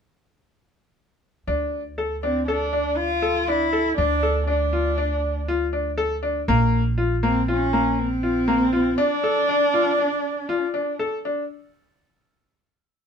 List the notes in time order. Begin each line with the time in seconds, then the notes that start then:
1.47 D2 D4
1.98 A4
2.22 C4 D4
2.47 D4 A4
2.73 D4
2.97 F4
3.22 A4
3.47 D4 E4
3.73 A4
3.97 D2 D4
4.23 A4
4.47 D4
4.73 F4
4.98 D4
5.48 F4
5.73 D4
5.97 A4
6.23 D4
6.48 A#1 A#3
6.98 F4
7.23 A#3 C4
7.48 C#4 F4
7.73 A#3
7.99 C4
8.23 F4
8.48 A#3
8.73 F4
8.97 D4
9.24 A4
9.49 D4
9.74 F4
9.98 D4
10.49 F4
10.74 D4
10.99 A4
11.25 D4